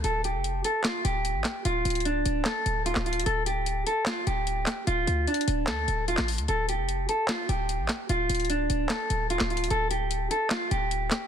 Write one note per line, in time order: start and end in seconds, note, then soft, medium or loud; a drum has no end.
0.04 0.36 D1 loud
0.04 0.21 A4 medium
0.04 closed hi-hat medium
0.24 0.62 G4 medium
0.24 closed hi-hat medium
0.34 0.63 F1 loud
0.44 closed hi-hat medium
0.64 0.82 A4 medium
0.64 closed hi-hat medium
0.84 1.02 F4 medium
0.84 snare loud
0.84 clap medium
0.84 closed hi-hat medium
1.05 1.36 D1 loud
1.05 1.61 G4 medium
1.05 closed hi-hat medium
1.25 closed hi-hat medium
1.35 1.44 A1 loud
1.44 snare medium
1.44 clap medium
1.44 closed hi-hat medium
1.65 1.84 D1 loud
1.65 2.03 F4 loud
1.65 closed hi-hat medium
1.85 2.24 D1 loud
1.85 closed hi-hat medium
1.90 closed hi-hat medium
1.95 closed hi-hat medium
2.00 closed hi-hat soft
2.05 2.43 D4 medium
2.05 closed hi-hat medium
2.26 2.45 D1 loud
2.26 closed hi-hat medium
2.45 2.84 A4 medium
2.45 snare loud
2.45 clap medium
2.45 closed hi-hat medium
2.66 2.95 D1 loud
2.66 closed hi-hat medium
2.86 3.03 F4 medium
2.86 closed hi-hat medium
2.95 3.25 D1 loud
2.95 snare medium
2.95 clap medium
3.06 3.23 F4 medium
3.06 closed hi-hat medium
3.13 closed hi-hat medium
3.19 closed hi-hat medium
3.26 3.84 D1 loud
3.26 3.43 A4 loud
3.26 closed hi-hat medium
3.46 3.84 G4 medium
3.46 closed hi-hat medium
3.66 closed hi-hat medium
3.87 4.04 A4 medium
3.87 closed hi-hat medium
4.06 4.24 F4 medium
4.06 snare loud
4.06 clap medium
4.06 closed hi-hat medium
4.27 4.65 D1 loud
4.27 4.84 G4 medium
4.27 closed hi-hat medium
4.47 closed hi-hat medium
4.66 snare medium
4.66 clap medium
4.66 closed hi-hat medium
4.87 5.07 D1 loud
4.87 5.25 F4 loud
4.87 closed hi-hat medium
5.07 5.27 D2 loud
5.07 closed hi-hat medium
5.27 5.65 D4 medium
5.27 closed hi-hat soft
5.34 closed hi-hat medium
5.41 closed hi-hat medium
5.48 5.69 D1 loud
5.48 closed hi-hat medium
5.67 5.87 D2 loud
5.67 6.06 A4 medium
5.67 snare loud
5.67 clap medium
5.67 closed hi-hat medium
5.88 6.17 D1 loud
5.88 closed hi-hat medium
6.08 6.25 F4 loud
6.08 closed hi-hat medium
6.17 6.40 A1 loud
6.17 snare loud
6.17 clap medium
6.28 closed hi-hat soft
6.28 open hi-hat medium
6.38 6.48 D2 loud
6.38 closed hi-hat medium
6.48 6.80 D1 loud
6.48 6.66 A4 loud
6.48 closed hi-hat medium
6.69 7.07 G4 medium
6.69 closed hi-hat medium
6.78 7.07 F1 loud
6.89 closed hi-hat medium
7.09 7.26 A4 medium
7.09 closed hi-hat medium
7.28 7.46 F4 medium
7.28 snare loud
7.28 clap medium
7.28 closed hi-hat medium
7.49 7.81 D1 loud
7.49 8.06 G4 medium
7.49 closed hi-hat medium
7.69 closed hi-hat medium
7.79 7.89 A1 loud
7.89 snare medium
7.89 clap medium
7.89 closed hi-hat medium
8.09 8.29 D1 loud
8.09 8.47 F4 loud
8.09 closed hi-hat medium
8.30 8.68 D1 loud
8.30 closed hi-hat medium
8.35 closed hi-hat medium
8.40 closed hi-hat medium
8.45 closed hi-hat soft
8.50 8.88 D4 medium
8.50 closed hi-hat medium
8.70 8.89 D1 loud
8.70 closed hi-hat medium
8.89 9.28 A4 medium
8.89 snare loud
8.89 clap medium
8.89 closed hi-hat medium
9.10 9.39 D1 loud
9.10 closed hi-hat medium
9.30 9.47 F4 medium
9.30 closed hi-hat medium
9.40 9.69 D1 loud
9.40 snare medium
9.40 clap medium
9.50 9.68 F4 medium
9.50 closed hi-hat medium
9.57 closed hi-hat medium
9.64 closed hi-hat medium
9.70 10.29 D1 loud
9.70 9.88 A4 loud
9.70 closed hi-hat medium
9.91 10.29 G4 medium
9.91 closed hi-hat medium
10.11 closed hi-hat medium
10.31 10.48 A4 medium
10.31 closed hi-hat medium
10.50 10.69 F4 medium
10.50 snare loud
10.50 clap medium
10.50 closed hi-hat medium
10.71 11.10 D1 loud
10.71 11.27 G4 medium
10.71 closed hi-hat medium
10.91 closed hi-hat medium
11.11 snare medium
11.11 clap medium
11.11 closed hi-hat medium